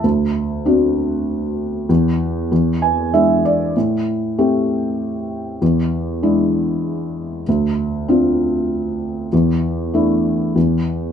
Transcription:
\new Staff \with { instrumentName = "Felt piano" } { \time 3/4 \key e \phrygian \tempo 4 = 97 << { r2. | r4. gis''8 e''8 d''8 | r2. | r2. |
r2. | r2. | } \\ { d,4 <c' d' fis'>2 | e,4 e,4 <gis d' e'>4 | a,4 <a c' g'>2 | e,4 <gis d' e'>2 |
d,4 <c' d' f'>2 | e,4 <a d' e'>4 e,4 | } >> }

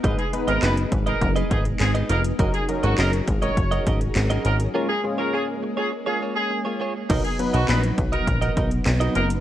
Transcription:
<<
  \new Staff \with { instrumentName = "Clean electric guitar" } { \time 4/4 \key ces \lydian \tempo 4 = 102 <ees' aes' ces'' ees''>16 r8 <ees' aes' ces'' ees''>16 <ees' aes' ces'' ees''>16 r8 <ees' aes' ces'' ees''>16 r16 <ees' aes' ces'' ees''>16 <ees' aes' ces'' ees''>16 r8 <ees' aes' ces'' ees''>16 <ees' aes' ces'' ees''>16 r16 | <des' ges' bes' ees''>16 r8 <des' ges' bes' ees''>16 <des' ges' bes' ees''>16 r8 <des' ges' bes' ees''>16 r16 <des' ges' bes' ees''>16 <des' ges' bes' ees''>16 r8 <des' ges' bes' ees''>16 <des' ges' bes' ees''>16 r16 | <bes f' aes' des''>16 r8 <bes f' aes' des''>16 <bes f' aes' des''>16 r8 <bes f' aes' des''>16 r16 <bes f' aes' des''>16 <bes f' aes' des''>16 r8 <bes f' aes' des''>16 <bes f' aes' des''>16 r16 | <dis' fis' ais' dis''>16 r8 <dis' fis' ais' dis''>16 <dis' fis' ais' dis''>16 r8 <dis' fis' ais' dis''>16 r16 <dis' fis' ais' dis''>16 <dis' fis' ais' dis''>16 r8 <dis' fis' ais' dis''>16 <dis' fis' ais' dis''>16 r16 | }
  \new Staff \with { instrumentName = "Horn section" } { \time 4/4 \key ces \lydian r16 aes'16 r16 bes'16 ces''16 r8 bes'8 r16 aes'16 r16 aes'16 r16 bes'16 r16 | r16 aes'16 r16 ges'16 bes'16 r8 des''8. r4 bes'16 r16 | r16 aes'16 r16 bes'16 aes'16 r8 aes'16 r16 aes'16 r16 aes'8 r8. | r16 aes'16 r16 fis'16 b'16 r8 ais'8. r4 ais'16 r16 | }
  \new Staff \with { instrumentName = "Synth keys" } { \time 4/4 \key ces \lydian <aes ces' ees' ces''>16 r16 <aes ces' ees' ces''>4 r2 r8 | <ges des' ees' bes'>16 r16 <ges des' ees' bes'>4 r2 r8 | <aes des' f' bes'>16 r16 <aes des' f' aes'>4 r2 r8 | <fis b dis' ais'>16 r16 <fis b dis' b'>4 r2 r8 | }
  \new Staff \with { instrumentName = "String machine" } { \time 4/4 \key ces \lydian << { <aes b dis'>1 | <ges aes' bes'>1 | <aes bes>1 | <fis b dis'>1 | } \\ { r1 | des'1~ | des'1 | r1 | } >> }
  \new Staff \with { instrumentName = "Analog synth bass" } { \clef bass \time 4/4 \key ces \lydian aes,,16 r8 aes,,16 ges,,8 aes,,8 ges,,8 aes,,8 aes,,8 f,,8 | ges,,16 r8 aes,,16 ges,,8 aes,,8 ges,,8 aes,,8 aes,,8 aes,,8 | r1 | b,,16 r8 b,,16 ais,,8 b,,8 ais,,8 b,,8 b,,8 fis,,8 | }
  \new DrumStaff \with { instrumentName = "Drums" } \drummode { \time 4/4 <hh bd>16 hh16 hh16 hh16 <hc hh sn>16 hh16 <hh bd>16 hh16 <hh bd>16 hh16 <hh bd>16 hh16 <hc hh sn>16 hh16 hh16 hh16 | <hh bd>16 hh16 hh16 hh16 <hc hh sn>16 hh16 <hh bd>16 hh16 <hh bd>16 hh16 <hh bd>16 hh16 <hc hh sn>16 hh16 hh16 hh16 | r4 r4 r4 r4 | <cymc hh bd>16 hh16 hh16 hh16 <hc hh sn>16 hh16 <hh bd>16 hh16 <hh bd>16 hh16 <hh bd>16 hh16 <hc hh sn>16 hh16 hh16 hh16 | }
>>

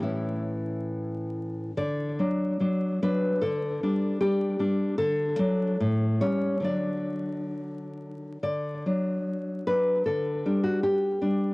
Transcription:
\new Staff \with { instrumentName = "Nylon-string guitar" } { \time 2/4 \key d \major \tempo 4 = 72 << { e'4 r4 | d''4. b'8 | a'4 g'4 | a'4. cis''8 |
d''4 r4 | d''4. b'8 | a'8. fis'16 g'4 | } \\ { <a, e cis'>2 | d8 <fis d'>8 <fis d'>8 <fis d'>8 | d8 <g d'>8 <g d'>8 <g d'>8 | d8 <fis d'>8 a,8 <g cis'>8 |
<d fis d'>2 | d8 <fis d'>4 <fis d'>8 | d8 <g d'>4 <g d'>8 | } >> }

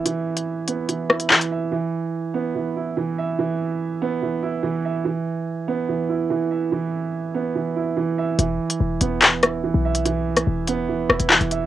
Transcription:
<<
  \new Staff \with { instrumentName = "Grand piano" } { \time 4/4 \key c \lydian \tempo 4 = 144 <e e' e''>4. b8 e8 e'8 e8 e''8 | e4. b8 e8 e'8 e8 e''8 | e4. b8 e8 e'8 e8 e''8 | e4. b8 e8 e'8 e8 e''8 |
e4. b8 e8 e'8 e8 e''8 | e4. b8 e8 e'8 e8 e''8 | e4. b8 e8 e'8 e8 e''8 | }
  \new Staff \with { instrumentName = "808-style bass" } { \clef bass \time 4/4 \key c \lydian r1 | r1 | r1 | r1 |
r1 | e,,8 r8 e,,8 e,,4.~ e,,16 b,,8.~ | b,,4 e,,4 dis,,16 e,,16 e,,16 e,,8 e,,8 dis,,16 | }
  \new DrumStaff \with { instrumentName = "Drums" } \drummode { \time 4/4 hh8. hh16 r8 hh8 hh8 ss16 hh16 hc16 hh8. | r4 r4 r4 r4 | r4 r4 r4 r4 | r4 r4 r4 r4 |
r4 r4 r4 r4 | hh8. hh16 r8 hh8 <hc hh>8 <hh ss>8 r8. hh16 | hh8. <hh ss>16 r8 hh8 r8 ss16 hh16 hc16 hh16 hh8 | }
>>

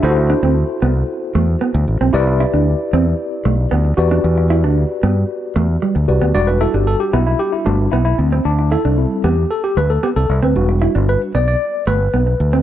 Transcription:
<<
  \new Staff \with { instrumentName = "Tine electric piano" } { \time 4/4 \key e \minor \tempo 4 = 114 << { <g' e''>16 r2. r8. | r1 | r1 | d''16 b'16 a'16 g'16 a'16 g'16 e'16 e'16 g'16 e'16 d'8 e'16 e'16 c'8 |
d'8 a'4 g'8 a'16 g'16 b'16 a'16 g'16 a'8 b'16~ | b'16 r8. b'8 d''16 d''8. b'4. | } \\ { <e' f' fis' a' c''>1 | <e' g' b' d''>2.~ <e' g' b' d''>8 <fis' g' b' d''>8~ | <fis' g' b' d''>2.~ <fis' g' b' d''>8 <fis' g' b' d''>8 | <g d' fis'>2~ <g d' fis'>8 <g fis'>8 r4 |
r4 <g c' e'>8 r2 r8 | <g d' fis'>4. r2 r8 | } >> }
  \new Staff \with { instrumentName = "Clean electric guitar" } { \time 4/4 \key e \minor r8 d'16 c'16 r8 b16 r8. a16 r16 b16 r8 c'16 | r8 e'16 d'16 r8 c'16 r8. a16 r16 b16 r8 d'16 | r8 e'16 d'16 r8 b16 r8. a16 r16 g16 r8 b16 | r8 e'16 d'16 r8 b16 r8. a16 r16 b16 r8 c'16 |
r8 e'16 d'16 r8 b16 r8. a16 r16 b16 r8 c'16 | r8 e'16 d'16 r8 b16 r8. a16 r16 b16 r8 c'16 | }
  \new Staff \with { instrumentName = "Fingered electric bass" } { \clef bass \time 4/4 \key e \minor d,8. d,8 r16 c,8 r8 e,8 r16 d,16 a,,16 b,,16 | c,8. d,8 r16 e,8 r8 b,,8 d,8 e,8 | e,8. d,8 r16 g,8 r8 e,8 r16 d,16 c,16 d,16 | e,,8. g,,8 r16 b,,8 r8 g,,8 b,,8 d,8 |
d,8. c,8 r16 e,8 r8 d,8 r16 c,16 c,16 d,16 | e,,8. g,,8 r16 b,,8 r8 g,,8 b,,8 d,8 | }
>>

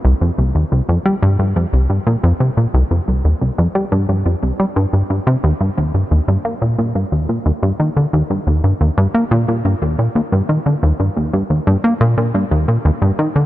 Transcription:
\new Staff \with { instrumentName = "Analog synth bass" } { \clef bass \time 4/4 \key ees \major \tempo 4 = 89 c,16 f,16 c,16 ees,16 c,16 f,16 g16 g,16 g,16 f,16 c,16 g,16 bes,16 f,16 c16 bes,16 | c,16 f,16 c,16 ees,16 c,16 f,16 g16 g,16 g,16 f,16 c,16 g16 g,16 g,16 g,16 c16 | ees,16 g,16 ees,16 g,16 ees,16 g,16 bes16 bes,16 bes,16 g,16 ees,16 bes,16 ees,16 g,16 ees16 d16 | ees,16 g,16 ees,16 g,16 ees,16 g,16 bes16 bes,16 bes,16 g,16 ees,16 bes,16 ees,16 g,16 ees16 d16 |
ees,16 g,16 ees,16 g,16 ees,16 g,16 bes16 bes,16 bes,16 g,16 ees,16 bes,16 ees,16 g,16 ees16 d16 | }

